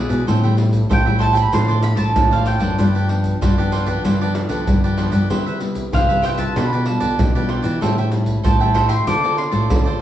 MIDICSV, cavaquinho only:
0, 0, Header, 1, 3, 480
1, 0, Start_track
1, 0, Tempo, 628272
1, 211, Time_signature, 4, 2, 24, 8
1, 7651, End_track
2, 0, Start_track
2, 0, Title_t, "Cavaquinho"
2, 0, Program_c, 0, 24
2, 69, Note_on_c, 0, 74, 55
2, 74, Note_on_c, 0, 71, 58
2, 79, Note_on_c, 0, 68, 53
2, 191, Note_off_c, 0, 74, 0
2, 193, Note_off_c, 0, 71, 0
2, 195, Note_off_c, 0, 68, 0
2, 205, Note_on_c, 0, 69, 50
2, 208, Note_on_c, 0, 72, 48
2, 212, Note_on_c, 0, 76, 47
2, 215, Note_on_c, 0, 79, 53
2, 319, Note_off_c, 0, 69, 0
2, 320, Note_off_c, 0, 72, 0
2, 322, Note_off_c, 0, 76, 0
2, 323, Note_off_c, 0, 79, 0
2, 332, Note_on_c, 0, 79, 65
2, 336, Note_on_c, 0, 76, 67
2, 341, Note_on_c, 0, 72, 57
2, 427, Note_off_c, 0, 72, 0
2, 429, Note_off_c, 0, 76, 0
2, 431, Note_off_c, 0, 79, 0
2, 684, Note_on_c, 0, 69, 54
2, 687, Note_on_c, 0, 72, 51
2, 692, Note_on_c, 0, 76, 56
2, 694, Note_on_c, 0, 79, 63
2, 798, Note_off_c, 0, 69, 0
2, 799, Note_off_c, 0, 72, 0
2, 799, Note_off_c, 0, 79, 0
2, 802, Note_off_c, 0, 76, 0
2, 808, Note_on_c, 0, 79, 59
2, 810, Note_on_c, 0, 76, 60
2, 819, Note_on_c, 0, 72, 53
2, 901, Note_off_c, 0, 72, 0
2, 906, Note_off_c, 0, 76, 0
2, 907, Note_on_c, 0, 69, 62
2, 909, Note_off_c, 0, 79, 0
2, 910, Note_on_c, 0, 72, 73
2, 915, Note_on_c, 0, 76, 65
2, 919, Note_on_c, 0, 79, 64
2, 1007, Note_off_c, 0, 79, 0
2, 1014, Note_off_c, 0, 76, 0
2, 1016, Note_on_c, 0, 79, 60
2, 1021, Note_off_c, 0, 72, 0
2, 1023, Note_on_c, 0, 76, 62
2, 1029, Note_off_c, 0, 69, 0
2, 1030, Note_on_c, 0, 72, 49
2, 1144, Note_off_c, 0, 79, 0
2, 1147, Note_off_c, 0, 76, 0
2, 1151, Note_off_c, 0, 72, 0
2, 1158, Note_on_c, 0, 65, 45
2, 1161, Note_on_c, 0, 69, 47
2, 1164, Note_on_c, 0, 72, 53
2, 1167, Note_on_c, 0, 74, 48
2, 1275, Note_off_c, 0, 65, 0
2, 1276, Note_off_c, 0, 69, 0
2, 1276, Note_off_c, 0, 74, 0
2, 1278, Note_off_c, 0, 72, 0
2, 1285, Note_on_c, 0, 74, 62
2, 1290, Note_on_c, 0, 72, 67
2, 1296, Note_on_c, 0, 69, 55
2, 1384, Note_off_c, 0, 69, 0
2, 1386, Note_off_c, 0, 72, 0
2, 1387, Note_off_c, 0, 74, 0
2, 1497, Note_on_c, 0, 74, 53
2, 1503, Note_on_c, 0, 72, 52
2, 1507, Note_on_c, 0, 69, 46
2, 1744, Note_off_c, 0, 74, 0
2, 1747, Note_off_c, 0, 72, 0
2, 1749, Note_off_c, 0, 69, 0
2, 1766, Note_on_c, 0, 74, 59
2, 1772, Note_on_c, 0, 72, 58
2, 1776, Note_on_c, 0, 69, 48
2, 1866, Note_off_c, 0, 69, 0
2, 1867, Note_off_c, 0, 72, 0
2, 1871, Note_on_c, 0, 65, 46
2, 1874, Note_off_c, 0, 74, 0
2, 1875, Note_on_c, 0, 69, 49
2, 1876, Note_on_c, 0, 72, 46
2, 1883, Note_on_c, 0, 74, 53
2, 1973, Note_off_c, 0, 74, 0
2, 1980, Note_off_c, 0, 72, 0
2, 1983, Note_on_c, 0, 74, 56
2, 1988, Note_off_c, 0, 69, 0
2, 1989, Note_on_c, 0, 72, 56
2, 1991, Note_off_c, 0, 65, 0
2, 1997, Note_on_c, 0, 69, 48
2, 2107, Note_off_c, 0, 74, 0
2, 2110, Note_off_c, 0, 72, 0
2, 2114, Note_off_c, 0, 69, 0
2, 2125, Note_on_c, 0, 65, 50
2, 2129, Note_on_c, 0, 67, 45
2, 2134, Note_on_c, 0, 71, 48
2, 2135, Note_on_c, 0, 74, 54
2, 2238, Note_off_c, 0, 65, 0
2, 2240, Note_off_c, 0, 67, 0
2, 2242, Note_off_c, 0, 71, 0
2, 2243, Note_off_c, 0, 74, 0
2, 2253, Note_on_c, 0, 74, 64
2, 2258, Note_on_c, 0, 71, 56
2, 2262, Note_on_c, 0, 67, 50
2, 2354, Note_off_c, 0, 67, 0
2, 2357, Note_off_c, 0, 71, 0
2, 2357, Note_off_c, 0, 74, 0
2, 2608, Note_on_c, 0, 65, 47
2, 2611, Note_on_c, 0, 67, 51
2, 2615, Note_on_c, 0, 71, 51
2, 2619, Note_on_c, 0, 74, 56
2, 2719, Note_off_c, 0, 65, 0
2, 2721, Note_off_c, 0, 67, 0
2, 2723, Note_off_c, 0, 71, 0
2, 2725, Note_off_c, 0, 74, 0
2, 2734, Note_on_c, 0, 74, 67
2, 2739, Note_on_c, 0, 71, 52
2, 2745, Note_on_c, 0, 67, 59
2, 2834, Note_off_c, 0, 67, 0
2, 2839, Note_off_c, 0, 71, 0
2, 2841, Note_on_c, 0, 65, 64
2, 2843, Note_off_c, 0, 74, 0
2, 2843, Note_on_c, 0, 67, 67
2, 2849, Note_on_c, 0, 71, 60
2, 2853, Note_on_c, 0, 74, 63
2, 2941, Note_off_c, 0, 74, 0
2, 2948, Note_off_c, 0, 71, 0
2, 2950, Note_on_c, 0, 74, 57
2, 2953, Note_off_c, 0, 67, 0
2, 2956, Note_off_c, 0, 65, 0
2, 2957, Note_on_c, 0, 71, 59
2, 2962, Note_on_c, 0, 67, 54
2, 3071, Note_off_c, 0, 74, 0
2, 3074, Note_off_c, 0, 71, 0
2, 3077, Note_off_c, 0, 67, 0
2, 3088, Note_on_c, 0, 65, 51
2, 3094, Note_on_c, 0, 67, 50
2, 3097, Note_on_c, 0, 71, 49
2, 3102, Note_on_c, 0, 74, 47
2, 3200, Note_off_c, 0, 65, 0
2, 3203, Note_off_c, 0, 67, 0
2, 3204, Note_off_c, 0, 71, 0
2, 3207, Note_off_c, 0, 74, 0
2, 3220, Note_on_c, 0, 74, 71
2, 3226, Note_on_c, 0, 71, 57
2, 3232, Note_on_c, 0, 67, 52
2, 3314, Note_off_c, 0, 67, 0
2, 3314, Note_off_c, 0, 71, 0
2, 3318, Note_off_c, 0, 74, 0
2, 3429, Note_on_c, 0, 74, 60
2, 3434, Note_on_c, 0, 71, 56
2, 3438, Note_on_c, 0, 67, 46
2, 3670, Note_off_c, 0, 74, 0
2, 3673, Note_off_c, 0, 71, 0
2, 3675, Note_off_c, 0, 67, 0
2, 3698, Note_on_c, 0, 74, 64
2, 3700, Note_on_c, 0, 71, 59
2, 3707, Note_on_c, 0, 67, 50
2, 3796, Note_off_c, 0, 67, 0
2, 3798, Note_on_c, 0, 65, 47
2, 3800, Note_off_c, 0, 71, 0
2, 3801, Note_off_c, 0, 74, 0
2, 3805, Note_on_c, 0, 67, 45
2, 3809, Note_on_c, 0, 71, 47
2, 3811, Note_on_c, 0, 74, 56
2, 3900, Note_off_c, 0, 74, 0
2, 3905, Note_off_c, 0, 71, 0
2, 3909, Note_on_c, 0, 74, 57
2, 3912, Note_off_c, 0, 67, 0
2, 3914, Note_on_c, 0, 71, 58
2, 3915, Note_off_c, 0, 65, 0
2, 3922, Note_on_c, 0, 67, 51
2, 4031, Note_off_c, 0, 74, 0
2, 4033, Note_off_c, 0, 71, 0
2, 4037, Note_off_c, 0, 67, 0
2, 4046, Note_on_c, 0, 67, 43
2, 4049, Note_on_c, 0, 72, 47
2, 4055, Note_on_c, 0, 71, 48
2, 4059, Note_on_c, 0, 76, 49
2, 4159, Note_off_c, 0, 67, 0
2, 4160, Note_off_c, 0, 72, 0
2, 4163, Note_off_c, 0, 71, 0
2, 4165, Note_off_c, 0, 76, 0
2, 4174, Note_on_c, 0, 76, 59
2, 4182, Note_on_c, 0, 71, 53
2, 4184, Note_on_c, 0, 72, 51
2, 4275, Note_off_c, 0, 71, 0
2, 4276, Note_off_c, 0, 72, 0
2, 4277, Note_off_c, 0, 76, 0
2, 4526, Note_on_c, 0, 67, 49
2, 4531, Note_on_c, 0, 72, 56
2, 4537, Note_on_c, 0, 71, 57
2, 4540, Note_on_c, 0, 76, 63
2, 4639, Note_off_c, 0, 67, 0
2, 4641, Note_off_c, 0, 76, 0
2, 4642, Note_off_c, 0, 72, 0
2, 4645, Note_off_c, 0, 71, 0
2, 4650, Note_on_c, 0, 76, 69
2, 4659, Note_on_c, 0, 71, 57
2, 4661, Note_on_c, 0, 72, 53
2, 4751, Note_off_c, 0, 72, 0
2, 4753, Note_on_c, 0, 67, 62
2, 4755, Note_off_c, 0, 71, 0
2, 4758, Note_off_c, 0, 76, 0
2, 4760, Note_on_c, 0, 72, 58
2, 4764, Note_on_c, 0, 71, 63
2, 4767, Note_on_c, 0, 76, 59
2, 4861, Note_off_c, 0, 76, 0
2, 4870, Note_off_c, 0, 71, 0
2, 4870, Note_on_c, 0, 76, 70
2, 4873, Note_off_c, 0, 67, 0
2, 4875, Note_off_c, 0, 72, 0
2, 4879, Note_on_c, 0, 71, 56
2, 4884, Note_on_c, 0, 72, 51
2, 4991, Note_off_c, 0, 76, 0
2, 4996, Note_off_c, 0, 71, 0
2, 4998, Note_off_c, 0, 72, 0
2, 5011, Note_on_c, 0, 65, 49
2, 5015, Note_on_c, 0, 67, 44
2, 5019, Note_on_c, 0, 71, 53
2, 5021, Note_on_c, 0, 74, 58
2, 5122, Note_off_c, 0, 65, 0
2, 5124, Note_off_c, 0, 67, 0
2, 5126, Note_off_c, 0, 71, 0
2, 5127, Note_off_c, 0, 74, 0
2, 5136, Note_on_c, 0, 74, 60
2, 5142, Note_on_c, 0, 71, 55
2, 5148, Note_on_c, 0, 67, 61
2, 5232, Note_off_c, 0, 67, 0
2, 5234, Note_off_c, 0, 71, 0
2, 5236, Note_off_c, 0, 74, 0
2, 5350, Note_on_c, 0, 74, 71
2, 5355, Note_on_c, 0, 71, 52
2, 5359, Note_on_c, 0, 67, 44
2, 5592, Note_off_c, 0, 74, 0
2, 5594, Note_off_c, 0, 71, 0
2, 5596, Note_off_c, 0, 67, 0
2, 5618, Note_on_c, 0, 74, 66
2, 5620, Note_on_c, 0, 71, 55
2, 5629, Note_on_c, 0, 67, 48
2, 5718, Note_off_c, 0, 67, 0
2, 5720, Note_off_c, 0, 71, 0
2, 5720, Note_on_c, 0, 65, 45
2, 5726, Note_off_c, 0, 74, 0
2, 5727, Note_on_c, 0, 67, 51
2, 5730, Note_on_c, 0, 71, 49
2, 5733, Note_on_c, 0, 74, 47
2, 5816, Note_off_c, 0, 74, 0
2, 5825, Note_off_c, 0, 71, 0
2, 5825, Note_on_c, 0, 74, 62
2, 5827, Note_off_c, 0, 67, 0
2, 5834, Note_on_c, 0, 71, 57
2, 5837, Note_off_c, 0, 65, 0
2, 5837, Note_on_c, 0, 67, 49
2, 5949, Note_off_c, 0, 74, 0
2, 5954, Note_off_c, 0, 71, 0
2, 5955, Note_off_c, 0, 67, 0
2, 5966, Note_on_c, 0, 69, 52
2, 5972, Note_on_c, 0, 72, 46
2, 5974, Note_on_c, 0, 76, 58
2, 5979, Note_on_c, 0, 79, 50
2, 6080, Note_off_c, 0, 69, 0
2, 6083, Note_off_c, 0, 72, 0
2, 6084, Note_off_c, 0, 76, 0
2, 6086, Note_off_c, 0, 79, 0
2, 6096, Note_on_c, 0, 79, 66
2, 6101, Note_on_c, 0, 76, 60
2, 6106, Note_on_c, 0, 72, 51
2, 6190, Note_off_c, 0, 72, 0
2, 6191, Note_off_c, 0, 76, 0
2, 6195, Note_off_c, 0, 79, 0
2, 6444, Note_on_c, 0, 69, 54
2, 6446, Note_on_c, 0, 72, 56
2, 6450, Note_on_c, 0, 76, 56
2, 6453, Note_on_c, 0, 79, 52
2, 6559, Note_off_c, 0, 69, 0
2, 6560, Note_off_c, 0, 72, 0
2, 6562, Note_off_c, 0, 76, 0
2, 6564, Note_off_c, 0, 79, 0
2, 6573, Note_on_c, 0, 79, 73
2, 6581, Note_on_c, 0, 76, 57
2, 6583, Note_on_c, 0, 72, 51
2, 6672, Note_off_c, 0, 72, 0
2, 6676, Note_off_c, 0, 76, 0
2, 6678, Note_on_c, 0, 69, 68
2, 6681, Note_off_c, 0, 79, 0
2, 6681, Note_on_c, 0, 72, 70
2, 6685, Note_on_c, 0, 76, 70
2, 6690, Note_on_c, 0, 79, 65
2, 6777, Note_off_c, 0, 79, 0
2, 6785, Note_off_c, 0, 76, 0
2, 6786, Note_on_c, 0, 79, 69
2, 6789, Note_off_c, 0, 72, 0
2, 6794, Note_on_c, 0, 76, 65
2, 6796, Note_off_c, 0, 69, 0
2, 6799, Note_on_c, 0, 72, 54
2, 6910, Note_off_c, 0, 79, 0
2, 6914, Note_off_c, 0, 76, 0
2, 6916, Note_off_c, 0, 72, 0
2, 6928, Note_on_c, 0, 65, 52
2, 6932, Note_on_c, 0, 69, 50
2, 6935, Note_on_c, 0, 72, 55
2, 6940, Note_on_c, 0, 74, 49
2, 7041, Note_off_c, 0, 65, 0
2, 7043, Note_off_c, 0, 69, 0
2, 7045, Note_off_c, 0, 72, 0
2, 7047, Note_off_c, 0, 74, 0
2, 7055, Note_on_c, 0, 74, 68
2, 7064, Note_on_c, 0, 72, 61
2, 7068, Note_on_c, 0, 69, 50
2, 7152, Note_off_c, 0, 69, 0
2, 7154, Note_off_c, 0, 72, 0
2, 7156, Note_off_c, 0, 74, 0
2, 7269, Note_on_c, 0, 74, 66
2, 7272, Note_on_c, 0, 72, 56
2, 7278, Note_on_c, 0, 69, 51
2, 7512, Note_off_c, 0, 74, 0
2, 7514, Note_off_c, 0, 72, 0
2, 7517, Note_off_c, 0, 69, 0
2, 7529, Note_on_c, 0, 74, 61
2, 7538, Note_on_c, 0, 72, 58
2, 7543, Note_on_c, 0, 69, 50
2, 7631, Note_off_c, 0, 69, 0
2, 7632, Note_off_c, 0, 72, 0
2, 7638, Note_off_c, 0, 74, 0
2, 7651, End_track
3, 0, Start_track
3, 0, Title_t, "Muted cavaquinho strokes"
3, 436, Note_on_c, 9, 29, 43
3, 512, Note_off_c, 9, 29, 0
3, 1393, Note_on_c, 9, 29, 44
3, 1470, Note_off_c, 9, 29, 0
3, 2359, Note_on_c, 9, 29, 36
3, 2435, Note_off_c, 9, 29, 0
3, 3320, Note_on_c, 9, 29, 40
3, 3396, Note_off_c, 9, 29, 0
3, 4281, Note_on_c, 9, 29, 36
3, 4357, Note_off_c, 9, 29, 0
3, 5237, Note_on_c, 9, 29, 36
3, 5314, Note_off_c, 9, 29, 0
3, 6199, Note_on_c, 9, 29, 37
3, 6275, Note_off_c, 9, 29, 0
3, 7159, Note_on_c, 9, 29, 35
3, 7235, Note_off_c, 9, 29, 0
3, 7651, End_track
0, 0, End_of_file